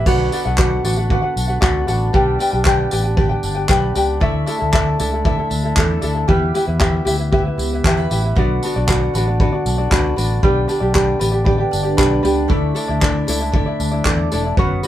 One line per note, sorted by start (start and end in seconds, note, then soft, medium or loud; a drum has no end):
0.00 0.12 E4 medium
0.00 1.62 B4 medium
0.06 0.28 B1 loud
0.06 2.13 D3 medium
0.06 2.13 B3 medium
0.06 4.18 B3 medium
0.06 0.32 F#4 medium
0.06 2.13 F#4 medium
0.06 0.32 B4 medium
0.06 0.32 D5 medium
0.06 0.58 F#5 medium
0.06 0.33 F#5 loud
0.06 kick loud
0.06 crash loud
0.32 0.84 D4 medium
0.32 0.46 F#4 medium
0.32 0.45 B4 medium
0.32 0.46 D5 medium
0.32 0.44 F#5 medium
0.32 tambourine medium
0.45 0.78 B1 loud
0.45 0.57 F#4 soft
0.45 0.58 B4 medium
0.45 0.58 F#5 medium
0.58 0.84 F#4 medium
0.58 0.84 B4 medium
0.58 0.83 D5 medium
0.58 1.09 F#5 medium
0.58 0.85 F#5 medium
0.58 kick loud
0.58 clap loud
0.84 1.16 A1 medium
0.84 1.37 D4 medium
0.84 0.98 F#4 medium
0.84 0.97 B4 medium
0.84 0.97 D5 medium
0.84 0.96 F#5 medium
0.84 tambourine medium
0.97 1.10 F#4 soft
0.97 1.11 B4 soft
0.97 1.10 F#5 medium
1.10 1.23 F#4 medium
1.10 1.22 B4 medium
1.10 1.24 D5 medium
1.10 2.14 F#5 medium
1.10 1.21 F#5 medium
1.10 kick loud
1.22 1.49 F#4 medium
1.22 1.48 B4 medium
1.22 1.46 F#5 medium
1.36 1.58 B1 medium
1.36 1.87 D4 medium
1.36 tambourine medium
1.48 1.61 F#4 soft
1.48 1.61 B4 medium
1.48 1.61 F#5 medium
1.61 1.84 C#2 medium
1.61 1.86 F#4 medium
1.61 1.87 B4 medium
1.61 3.68 B4 medium
1.61 1.86 D5 medium
1.61 1.88 F#5 loud
1.61 kick loud
1.61 clap loud
1.87 2.10 A1 medium
1.87 2.39 D4 medium
1.87 2.13 F#4 medium
1.87 2.12 B4 medium
1.87 2.12 D5 medium
1.87 2.14 F#5 medium
1.87 tambourine medium
2.13 2.36 B1 loud
2.13 4.20 G3 medium
2.13 6.26 D4 medium
2.13 2.39 G4 medium
2.13 4.21 G4 medium
2.13 2.40 B4 medium
2.13 2.38 D5 medium
2.13 2.64 G5 medium
2.13 2.40 G5 medium
2.13 kick medium
2.39 2.91 D4 medium
2.39 2.53 G4 medium
2.39 2.51 B4 medium
2.39 2.53 D5 medium
2.39 2.50 G5 medium
2.39 tambourine medium
2.51 2.85 B1 medium
2.51 2.64 G4 medium
2.51 2.64 B4 medium
2.51 2.65 G5 medium
2.64 2.91 G4 medium
2.64 2.91 B4 loud
2.64 2.90 D5 medium
2.64 3.16 G5 medium
2.64 2.92 G5 medium
2.64 kick loud
2.64 clap loud
2.91 3.35 A1 medium
2.91 3.44 D4 medium
2.91 3.04 G4 medium
2.91 3.03 B4 medium
2.91 3.05 D5 medium
2.91 3.02 G5 medium
2.91 tambourine medium
3.04 3.16 G4 soft
3.04 3.17 B4 medium
3.04 3.17 G5 medium
3.17 3.30 G4 medium
3.17 3.29 B4 medium
3.17 3.30 D5 medium
3.17 4.21 G5 medium
3.17 3.28 G5 medium
3.17 kick loud
3.29 3.56 G4 soft
3.29 3.54 B4 medium
3.29 3.54 G5 medium
3.43 3.65 G1 medium
3.43 3.95 D4 medium
3.43 tambourine medium
3.55 3.68 G4 soft
3.55 3.68 B4 medium
3.55 3.69 G5 medium
3.68 3.91 B1 loud
3.68 3.94 G4 loud
3.68 4.27 B4 medium
3.68 3.95 B4 loud
3.68 3.94 D5 medium
3.68 3.95 G5 loud
3.68 kick loud
3.68 clap loud
3.95 4.17 C#2 medium
3.95 4.46 D4 medium
3.95 4.20 G4 medium
3.95 4.21 B4 medium
3.95 4.20 D5 medium
3.95 4.22 G5 medium
3.95 tambourine medium
4.20 4.43 D2 loud
4.20 6.27 A3 medium
4.20 4.46 E4 medium
4.20 6.27 E4 medium
4.20 4.47 A4 medium
4.20 4.45 D5 medium
4.20 4.72 E5 medium
4.20 4.47 E5 medium
4.20 kick loud
4.46 4.98 D4 medium
4.46 4.60 E4 medium
4.46 4.59 A4 medium
4.46 4.58 D5 medium
4.46 4.58 E5 medium
4.46 tambourine medium
4.59 4.93 D2 loud
4.59 4.72 E4 medium
4.59 4.73 A4 medium
4.59 4.72 E5 medium
4.72 4.99 E4 medium
4.72 4.99 A4 loud
4.72 4.98 D5 medium
4.72 5.25 E5 medium
4.72 5.00 E5 loud
4.72 kick loud
4.72 clap loud
4.99 5.32 C#2 medium
4.99 5.49 D4 medium
4.99 5.13 E4 medium
4.99 5.12 A4 medium
4.99 5.12 D5 medium
4.99 5.11 E5 medium
4.99 tambourine medium
5.13 5.24 E4 soft
5.13 5.24 A4 medium
5.13 5.24 E5 medium
5.25 5.38 E4 medium
5.25 5.38 A4 medium
5.25 5.37 D5 medium
5.25 6.29 E5 medium
5.25 5.37 E5 medium
5.25 kick loud
5.38 5.64 E4 medium
5.38 5.63 A4 medium
5.38 5.62 E5 medium
5.50 5.72 D2 medium
5.50 6.00 D4 medium
5.50 tambourine medium
5.63 5.76 E4 soft
5.63 5.77 A4 medium
5.63 5.76 E5 medium
5.77 5.98 E2 loud
5.77 6.01 E4 medium
5.77 6.28 A4 medium
5.77 6.02 A4 loud
5.77 6.00 D5 medium
5.77 6.02 E5 medium
5.77 kick loud
5.77 clap loud
6.01 6.24 D2 medium
6.01 6.34 D4 medium
6.01 6.15 E4 medium
6.01 6.14 A4 medium
6.01 6.14 D5 medium
6.01 6.13 E5 medium
6.01 tambourine medium
6.14 6.27 E4 soft
6.14 6.28 A4 soft
6.14 6.27 E5 medium
6.28 6.50 E2 loud
6.28 8.35 E3 medium
6.28 8.35 G3 medium
6.28 12.47 B3 medium
6.28 6.54 E4 medium
6.28 6.53 G4 medium
6.28 8.35 G4 medium
6.28 6.55 B4 medium
6.28 6.80 E5 medium
6.28 6.55 E5 medium
6.28 kick loud
6.54 7.05 E4 medium
6.54 6.67 E4 medium
6.54 6.66 G4 medium
6.54 6.67 B4 medium
6.54 6.66 E5 medium
6.54 tambourine medium
6.67 7.00 E2 loud
6.67 6.79 E4 medium
6.67 6.80 B4 medium
6.67 6.79 E5 medium
6.79 7.05 E4 medium
6.79 7.04 G4 medium
6.79 7.05 B4 medium
6.79 7.06 E5 medium
6.79 7.31 E5 medium
6.79 kick loud
6.79 clap loud
7.05 7.49 D2 medium
7.05 7.19 E4 medium
7.05 7.57 E4 medium
7.05 7.17 G4 medium
7.05 7.18 B4 medium
7.05 7.17 E5 medium
7.05 tambourine medium
7.18 7.31 E4 soft
7.18 7.32 B4 soft
7.18 7.31 E5 soft
7.32 7.45 E4 medium
7.32 7.44 G4 medium
7.32 7.45 B4 medium
7.32 7.84 E5 medium
7.32 7.44 E5 medium
7.32 kick loud
7.45 7.73 E4 medium
7.45 7.58 B4 medium
7.45 7.72 B4 medium
7.45 7.71 E5 medium
7.58 7.79 C#2 medium
7.58 7.83 B3 medium
7.58 8.09 E4 medium
7.58 7.83 G4 medium
7.58 tambourine medium
7.73 7.85 E4 soft
7.73 7.85 B4 medium
7.73 7.85 E5 medium
7.83 8.06 E2 loud
7.83 8.10 E4 medium
7.83 8.10 G4 medium
7.83 7.97 A4 medium
7.83 7.96 B4 medium
7.83 8.11 B4 loud
7.83 8.11 E5 loud
7.83 kick loud
7.83 clap loud
7.96 8.34 G4 medium
7.96 8.41 B4 soft
7.96 8.34 E5 medium
8.10 8.32 A1 medium
8.10 8.41 E4 medium
8.10 8.24 E4 medium
8.10 8.23 G4 medium
8.10 8.24 B4 medium
8.10 8.23 E5 medium
8.10 tambourine medium
8.24 8.38 E4 soft
8.24 8.36 B4 soft
8.24 8.37 E5 medium
8.36 8.58 B1 loud
8.36 12.47 D3 medium
8.36 10.42 B3 medium
8.36 8.63 D4 medium
8.36 10.42 F#4 medium
8.36 8.63 F#4 medium
8.36 8.63 B4 medium
8.36 8.63 D5 medium
8.36 8.86 F#5 medium
8.36 kick loud
8.63 9.13 D4 medium
8.63 8.76 D4 medium
8.63 8.76 F#4 medium
8.63 8.76 B4 medium
8.63 8.75 D5 medium
8.63 tambourine medium
8.76 9.07 B1 medium
8.76 8.88 D4 medium
8.76 8.88 F#4 medium
8.76 8.88 D5 medium
8.87 9.14 D4 medium
8.87 9.14 F#4 medium
8.87 9.14 B4 medium
8.87 9.15 D5 medium
8.87 9.39 F#5 medium
8.87 kick loud
8.87 clap loud
9.14 9.46 A1 medium
9.14 9.66 D4 medium
9.14 9.28 D4 medium
9.14 9.28 F#4 medium
9.14 9.27 B4 medium
9.14 9.26 D5 medium
9.14 tambourine medium
9.28 9.40 D4 soft
9.28 9.41 F#4 soft
9.28 9.40 D5 medium
9.40 9.53 D4 medium
9.40 9.53 F#4 medium
9.40 9.53 B4 medium
9.40 9.51 D5 medium
9.40 10.43 F#5 medium
9.40 kick loud
9.52 9.79 D4 soft
9.52 9.78 F#4 medium
9.52 9.77 D5 medium
9.66 9.87 B1 medium
9.66 10.16 D4 medium
9.66 tambourine medium
9.78 9.90 D4 soft
9.78 9.91 F#4 medium
9.78 9.91 D5 medium
9.91 10.13 C#2 medium
9.91 10.16 D4 medium
9.91 10.17 F#4 loud
9.91 10.15 B4 medium
9.91 11.96 B4 medium
9.91 10.17 D5 loud
9.91 kick loud
9.91 clap loud
10.16 10.39 A1 medium
10.16 10.68 D4 medium
10.16 10.42 D4 medium
10.16 10.43 F#4 medium
10.16 10.41 B4 medium
10.16 10.43 D5 medium
10.16 tambourine medium
10.43 10.64 B1 loud
10.43 12.48 G3 medium
10.43 10.68 D4 medium
10.43 10.68 G4 loud
10.43 12.49 G4 medium
10.43 10.66 B4 medium
10.43 10.69 D5 medium
10.43 10.93 G5 medium
10.43 kick loud
10.68 11.20 D4 medium
10.68 10.82 D4 medium
10.68 10.81 G4 medium
10.68 10.81 B4 medium
10.68 10.79 D5 medium
10.68 tambourine medium
10.80 11.13 B1 loud
10.80 10.93 D4 medium
10.80 10.93 G4 medium
10.80 10.94 D5 medium
10.94 11.18 D4 medium
10.94 11.20 G4 medium
10.94 11.18 B4 medium
10.94 11.20 D5 medium
10.94 11.44 G5 medium
10.94 kick loud
10.94 clap loud
11.19 11.63 A1 medium
11.19 11.32 D4 medium
11.19 11.71 D4 medium
11.19 11.31 G4 medium
11.19 11.33 B4 medium
11.19 11.30 D5 medium
11.19 tambourine medium
11.32 11.44 D4 soft
11.32 11.45 G4 medium
11.32 11.45 D5 medium
11.44 11.59 D4 medium
11.44 11.58 G4 medium
11.44 11.58 B4 medium
11.44 11.57 D5 medium
11.44 12.48 G5 medium
11.44 kick loud
11.58 11.84 D4 medium
11.58 11.83 G4 medium
11.58 11.72 B4 medium
11.58 11.82 D5 medium
11.58 11.72 G5 medium
11.71 11.94 G1 medium
11.71 12.23 D4 medium
11.71 11.86 D5 medium
11.71 tambourine medium
11.83 11.97 D4 soft
11.83 11.97 G4 medium
11.83 11.98 B4 medium
11.83 11.97 D5 medium
11.88 11.99 D4 medium
11.97 12.19 B1 loud
11.97 12.22 D4 medium
11.97 12.23 G4 medium
11.97 12.55 B4 medium
11.97 12.22 B4 medium
11.97 12.23 D5 loud
11.97 12.11 D5 medium
11.97 kick loud
11.97 clap loud
12.12 12.49 D4 medium
12.12 12.49 B4 medium
12.23 12.45 C#2 medium
12.23 12.74 D4 medium
12.23 12.48 D4 medium
12.23 12.50 G4 medium
12.23 12.48 B4 medium
12.23 12.49 D5 medium
12.23 tambourine medium
12.48 12.71 D2 loud
12.48 14.56 A3 medium
12.48 12.75 D4 loud
12.48 14.56 D4 medium
12.48 12.75 E4 medium
12.48 14.56 E4 medium
12.48 12.74 A4 medium
12.48 12.76 D5 loud
12.48 12.99 E5 medium
12.48 kick loud
12.52 14.56 A3 medium
12.75 13.26 D4 medium
12.75 12.89 D4 medium
12.75 12.88 E4 medium
12.75 12.88 A4 medium
12.75 12.87 D5 medium
12.75 tambourine medium
12.88 13.21 D2 medium
12.88 13.01 D4 medium
12.88 13.02 E4 medium
12.88 13.01 D5 medium
13.00 13.27 D4 medium
13.00 13.28 E4 medium
13.00 13.27 A4 medium
13.00 13.28 D5 medium
13.00 13.51 E5 medium
13.00 kick loud
13.00 clap loud
13.27 13.60 C#2 medium
13.27 13.79 D4 medium
13.27 13.41 D4 medium
13.27 13.40 E4 medium
13.27 13.41 A4 medium
13.27 13.39 D5 medium
13.27 tambourine medium
13.40 13.53 D4 soft
13.40 13.54 E4 medium
13.40 13.53 D5 medium
13.52 13.67 D4 medium
13.52 13.66 E4 medium
13.52 13.66 A4 medium
13.52 13.65 D5 medium
13.52 14.56 E5 medium
13.52 kick loud
13.66 13.92 D4 soft
13.66 13.92 E4 medium
13.66 13.90 D5 medium
13.80 14.01 D2 medium
13.80 14.30 D4 medium
13.80 tambourine medium
13.91 14.04 D4 medium
13.91 14.05 E4 medium
13.91 14.05 D5 medium
14.05 14.26 E2 loud
14.05 14.31 D4 loud
14.05 14.31 E4 medium
14.05 14.30 A4 medium
14.05 14.62 D5 medium
14.05 14.32 D5 loud
14.05 kick loud
14.05 clap loud
14.32 14.53 E1 medium
14.32 14.62 D4 medium
14.32 14.45 D4 medium
14.32 14.45 E4 medium
14.32 14.44 A4 medium
14.32 14.44 D5 medium
14.32 tambourine medium
14.45 14.58 D4 soft
14.45 14.58 E4 medium
14.45 14.57 D5 medium
14.57 14.79 F#1 loud
14.57 14.87 C#3 medium
14.57 14.87 B3 medium
14.57 14.83 C#4 medium
14.57 14.87 F#4 medium
14.57 14.84 F#4 medium
14.57 14.82 B4 medium
14.57 14.83 C#5 medium
14.57 14.87 F#5 medium
14.57 kick loud
14.83 14.87 F#4 medium
14.83 14.87 B4 medium
14.83 tambourine medium